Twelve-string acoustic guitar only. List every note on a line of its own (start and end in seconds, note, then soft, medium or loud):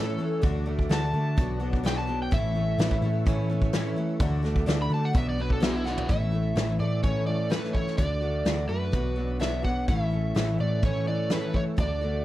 0.00 0.19 A2 medium
0.00 0.19 E3 medium
0.00 0.20 A3 medium
0.00 0.19 C#4 medium
0.00 0.17 A4 medium
0.18 0.41 A3 medium
0.18 0.43 C#4 medium
0.18 0.42 A4 medium
0.42 0.66 D3 medium
0.42 0.66 A3 medium
0.42 0.66 D4 medium
0.42 0.65 F#4 medium
0.66 0.89 A3 medium
0.66 0.90 D4 soft
0.66 0.90 F#4 medium
0.89 1.13 D3 medium
0.89 1.14 A3 medium
0.89 1.13 D4 medium
0.89 1.12 F#4 medium
1.13 1.38 A3 soft
1.13 1.37 D4 soft
1.13 1.37 F#4 medium
1.37 1.61 F#3 medium
1.37 1.61 B3 medium
1.37 1.60 D4 medium
1.37 1.59 F#4 medium
1.60 1.83 B3 soft
1.60 1.84 D4 medium
1.60 1.84 F#4 medium
1.83 2.08 B2 medium
1.83 2.08 F#3 medium
1.83 2.08 B3 medium
1.83 2.08 D4 medium
1.83 2.06 F#4 medium
2.07 2.32 B3 soft
2.07 2.32 D4 medium
2.07 2.31 F#4 medium
2.31 2.55 A2 medium
2.31 2.55 E3 medium
2.31 2.56 A3 medium
2.31 2.55 C#4 medium
2.31 2.54 E4 medium
2.55 2.78 A3 soft
2.55 2.79 C#4 soft
2.55 2.79 E4 soft
2.79 3.02 A2 medium
2.79 3.03 E3 medium
2.79 3.03 A3 medium
2.79 3.02 C#4 medium
2.79 3.01 E4 medium
3.02 3.26 A3 medium
3.02 3.26 C#4 medium
3.02 3.26 E4 medium
3.26 3.49 E3 medium
3.26 3.50 A3 medium
3.26 3.50 C#4 medium
3.26 3.48 E4 medium
3.50 3.73 A3 soft
3.50 3.73 C#4 medium
3.50 3.73 E4 medium
3.73 3.97 A2 medium
3.73 3.97 E3 medium
3.73 3.97 A3 medium
3.73 3.97 C#4 loud
3.73 3.95 E4 loud
3.96 4.19 A3 soft
3.96 4.21 C#4 medium
3.96 4.20 E4 medium
4.20 4.44 D3 loud
4.20 4.44 A3 medium
4.20 4.43 D4 loud
4.20 4.41 F#4 medium
4.43 4.66 A3 soft
4.43 4.66 D4 medium
4.43 4.67 F#4 medium
4.66 4.90 D3 medium
4.66 4.91 A3 medium
4.66 4.90 D4 medium
4.66 4.89 F#4 medium
4.90 5.14 A3 soft
4.90 5.14 D4 medium
4.90 5.14 F#4 medium
5.13 5.38 F#3 medium
5.13 5.38 B3 medium
5.13 5.38 D4 medium
5.13 5.37 F#4 medium
5.38 5.60 B3 soft
5.38 5.61 D4 soft
5.38 5.61 F#4 medium
5.60 5.85 B2 medium
5.60 5.85 F#3 medium
5.60 5.85 B3 medium
5.60 5.85 D4 medium
5.60 5.83 F#4 medium
5.84 6.09 B3 medium
5.84 6.09 D4 soft
5.84 6.09 F#4 medium
6.09 6.33 A2 medium
6.09 6.33 E3 medium
6.09 6.33 A3 medium
6.09 6.33 C#4 medium
6.09 6.31 E4 medium
6.32 6.55 A3 soft
6.32 6.56 C#4 soft
6.32 6.56 E4 soft
6.56 6.80 A2 medium
6.56 6.80 E3 medium
6.56 6.80 A3 medium
6.56 6.79 C#4 medium
6.56 6.78 E4 medium
6.79 7.02 A3 soft
6.79 7.03 C#4 soft
6.79 7.03 E4 medium
7.02 7.27 E3 medium
7.02 7.27 A3 medium
7.02 7.26 C#4 medium
7.02 7.25 E4 medium
7.26 7.50 A3 soft
7.26 7.50 C#4 soft
7.26 7.51 E4 medium
7.50 7.74 A2 medium
7.50 7.74 E3 medium
7.50 7.75 A3 medium
7.50 7.74 C#4 medium
7.50 7.73 E4 medium
7.74 7.97 A3 soft
7.74 7.98 C#4 soft
7.74 7.98 E4 medium
7.97 8.22 D3 medium
7.97 8.22 A3 medium
7.97 8.21 D4 medium
7.97 8.20 F#4 medium
8.21 8.44 A3 soft
8.21 8.45 D4 soft
8.21 8.45 F#4 soft
8.45 8.69 D3 medium
8.45 8.69 A3 medium
8.45 8.69 D4 medium
8.45 8.67 F#4 medium
8.68 8.92 A3 soft
8.68 8.93 D4 medium
8.68 8.93 F#4 medium
8.92 9.16 F#3 medium
8.92 9.17 B3 medium
8.92 9.16 D4 medium
8.92 9.15 F#4 medium
9.16 9.40 B3 soft
9.16 9.40 D4 soft
9.16 9.40 F#4 medium
9.39 9.64 B2 medium
9.39 9.64 F#3 medium
9.39 9.64 B3 medium
9.39 9.63 D4 medium
9.39 9.62 F#4 medium
9.63 9.88 B3 soft
9.63 9.88 D4 medium
9.63 9.87 F#4 medium
9.88 10.12 A2 medium
9.88 10.12 E3 medium
9.88 10.12 A3 medium
9.88 10.11 C#4 medium
9.88 10.10 E4 medium
10.11 10.35 A3 soft
10.11 10.35 C#4 soft
10.11 10.35 E4 soft
10.35 10.59 A2 medium
10.35 10.59 E3 medium
10.35 10.60 A3 medium
10.35 10.59 C#4 medium
10.35 10.57 E4 medium
10.58 10.82 A3 soft
10.58 10.83 C#4 soft
10.58 10.83 E4 soft
10.82 11.06 E3 medium
10.82 11.07 A3 medium
10.82 11.06 C#4 medium
10.82 11.05 E4 medium
11.06 11.30 A3 soft
11.06 11.31 C#4 soft
11.06 11.30 E4 soft
11.31 11.54 A2 medium
11.31 11.55 E3 medium
11.31 11.55 A3 medium
11.31 11.53 C#4 medium
11.31 11.52 E4 medium
11.53 11.76 A3 soft
11.53 11.78 C#4 medium
11.53 11.78 E4 medium
11.77 12.01 D3 medium
11.77 12.02 A3 medium
11.77 12.01 D4 medium
11.77 12.00 F#4 medium
12.01 12.25 A3 soft
12.01 12.25 D4 soft
12.01 12.25 F#4 medium